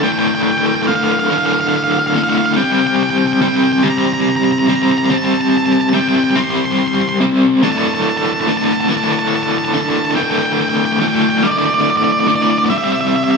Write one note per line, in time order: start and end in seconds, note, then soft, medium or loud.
0.00 0.87 D2 medium
0.00 0.11 G5 loud
0.00 0.03 A5 medium
0.05 0.88 A2 loud
0.05 0.88 D3 loud
0.12 0.18 G5 medium
0.19 0.27 G5 medium
0.28 0.34 G5 medium
0.35 0.42 G5 medium
0.43 0.51 G5 medium
0.51 0.57 G5 medium
0.58 0.66 G5 medium
0.66 0.74 G5 medium
0.75 0.82 G5 medium
0.83 0.87 G5 medium
0.87 1.29 D2 medium
0.87 1.30 A2 loud
0.87 1.30 D3 loud
0.87 0.95 F5 medium
0.95 1.04 F5 medium
1.04 1.11 F5 medium
1.12 1.19 F5 medium
1.20 1.28 F5 medium
1.30 2.15 D2 loud
1.30 2.15 A2 loud
1.30 2.16 D3 loud
1.30 1.37 F5 medium
1.38 1.46 F5 medium
1.46 1.53 F5 medium
1.53 1.60 F5 medium
1.61 1.68 F5 medium
1.68 1.76 F5 medium
1.76 1.83 F5 medium
1.84 1.91 F5 medium
1.92 1.99 F5 medium
1.99 2.07 F5 medium
2.07 2.14 F5 medium
2.14 2.55 D2 medium
2.14 2.55 A2 medium
2.14 2.56 D3 loud
2.14 2.22 F5 medium
2.23 2.29 F5 medium
2.29 2.37 F5 medium
2.37 2.45 F5 medium
2.46 2.53 F5 medium
2.54 3.41 C3 loud
2.54 2.56 F5 medium
2.54 2.64 G5 loud
2.58 3.42 G3 loud
2.58 3.42 C4 loud
2.64 2.72 G5 medium
2.72 2.79 G5 loud
2.80 2.86 G5 medium
2.87 2.95 G5 medium
2.96 3.02 G5 medium
3.03 3.10 G5 loud
3.10 3.17 G5 medium
3.18 3.26 G5 loud
3.27 3.33 G5 medium
3.33 3.41 G5 loud
3.42 3.82 C3 loud
3.42 3.83 G3 loud
3.42 3.84 C4 loud
3.42 3.48 G5 medium
3.48 3.56 G5 loud
3.56 3.63 G5 medium
3.64 3.71 G5 medium
3.73 3.79 G5 medium
3.79 4.67 C3 loud
3.79 3.87 G5 medium
3.79 3.89 A#5 loud
3.84 4.68 G3 loud
3.84 4.69 C4 loud
3.90 3.97 A#5 medium
3.98 4.06 A#5 loud
4.06 4.13 A#5 medium
4.13 4.21 A#5 loud
4.21 4.29 A#5 medium
4.30 4.36 A#5 medium
4.36 4.44 A#5 medium
4.44 4.52 A#5 loud
4.52 4.59 A#5 medium
4.59 4.67 A#5 loud
4.67 5.09 C3 medium
4.67 5.09 G3 loud
4.67 5.10 C4 loud
4.67 4.75 A#5 medium
4.75 4.82 A#5 medium
4.83 4.90 A#5 medium
4.91 4.98 A#5 medium
4.98 5.05 A#5 medium
5.06 5.13 A#5 medium
5.10 5.92 C3 medium
5.10 5.93 G3 loud
5.10 5.94 C4 loud
5.10 5.17 A5 loud
5.17 5.25 A5 medium
5.25 5.33 A5 loud
5.34 5.41 A5 medium
5.41 5.49 A5 loud
5.50 5.57 A5 medium
5.57 5.65 A5 loud
5.66 5.72 A5 medium
5.73 5.81 A5 loud
5.81 5.89 A5 medium
5.89 5.94 A5 medium
5.93 6.35 C3 medium
5.93 6.35 G3 medium
5.93 6.37 C4 medium
5.93 6.00 G5 medium
6.01 6.08 G5 medium
6.09 6.16 G5 medium
6.16 6.23 G5 medium
6.24 6.30 G5 medium
6.31 6.38 G5 medium
6.36 7.19 C3 loud
6.36 7.20 G3 loud
6.36 7.21 C4 loud
6.36 6.43 C6 loud
6.44 6.50 C6 medium
6.50 6.57 C6 loud
6.57 6.65 C6 medium
6.65 6.72 C6 loud
6.72 6.78 C6 medium
6.79 6.86 C6 medium
6.88 6.94 C6 medium
6.94 7.01 C6 loud
7.01 7.08 C6 medium
7.09 7.16 C6 medium
7.20 7.60 C3 medium
7.20 7.61 G3 medium
7.20 7.63 C4 medium
7.63 8.47 D2 loud
7.63 8.46 A2 loud
7.63 8.48 D3 loud
7.63 7.71 A5 loud
7.72 7.78 A5 medium
7.78 7.86 A5 medium
7.87 7.94 A5 medium
7.95 8.02 A5 loud
8.03 8.09 A5 medium
8.10 8.17 A5 loud
8.17 8.25 A5 medium
8.25 8.33 A5 loud
8.33 8.40 A5 medium
8.41 8.49 A5 loud
8.47 8.88 D2 medium
8.47 8.88 A2 loud
8.47 8.89 D3 loud
8.47 8.57 A5 medium
8.57 8.65 A5 loud
8.65 8.73 A5 medium
8.73 8.80 A5 loud
8.81 8.88 A5 medium
8.89 9.73 D2 loud
8.89 9.73 A2 loud
8.89 9.74 D3 loud
8.89 8.97 A5 loud
8.97 9.04 A5 medium
9.04 9.12 A5 loud
9.12 9.19 A5 medium
9.19 9.27 A5 loud
9.29 9.35 A5 medium
9.35 9.43 A5 loud
9.43 9.51 A5 medium
9.51 9.58 A5 medium
9.58 9.64 A5 medium
9.65 9.72 A5 loud
9.74 10.15 D2 medium
9.74 10.16 A2 medium
9.74 10.16 D3 loud
9.74 9.80 A5 medium
9.81 9.88 A5 loud
9.90 9.96 A5 medium
9.96 10.04 A5 medium
10.05 10.11 A5 medium
10.11 10.15 A5 medium
10.15 10.99 D2 loud
10.15 11.00 A2 loud
10.15 11.00 D3 loud
10.15 10.23 G5 loud
10.23 10.31 G5 medium
10.31 10.38 G5 loud
10.39 10.45 G5 medium
10.46 10.52 G5 loud
10.53 10.61 G5 medium
10.61 10.69 G5 loud
10.69 10.76 G5 medium
10.77 10.84 G5 loud
10.85 10.92 G5 medium
10.93 10.99 G5 medium
11.00 11.42 D2 medium
11.00 11.42 A2 medium
11.00 11.43 D3 loud
11.00 11.07 G5 medium
11.08 11.15 G5 loud
11.16 11.22 G5 medium
11.22 11.30 G5 medium
11.30 11.38 G5 medium
11.38 11.46 G5 medium
11.43 12.26 D2 loud
11.43 12.27 A2 loud
11.43 12.27 D3 loud
11.43 11.51 D5 loud
11.51 11.58 D5 medium
11.58 11.65 D5 medium
11.66 11.73 D5 medium
11.74 11.81 D5 medium
11.81 11.89 D5 medium
11.90 11.97 D5 medium
11.97 12.04 D5 medium
12.04 12.12 D5 medium
12.12 12.20 D5 medium
12.20 12.27 D5 medium
12.27 12.67 D2 medium
12.27 12.67 A2 medium
12.27 12.68 D3 medium
12.27 12.35 D5 medium
12.35 12.42 D5 medium
12.42 12.50 D5 medium
12.50 12.58 D5 medium
12.58 12.65 D5 medium
12.66 12.69 D5 medium
12.70 13.37 C3 loud
12.70 13.37 G3 loud
12.70 13.37 C4 loud
12.70 12.77 E5 loud
12.78 12.84 E5 medium
12.84 12.92 E5 medium
12.92 13.00 E5 medium
13.01 13.07 E5 loud
13.08 13.16 E5 medium
13.16 13.24 E5 loud
13.24 13.30 E5 medium
13.31 13.37 E5 loud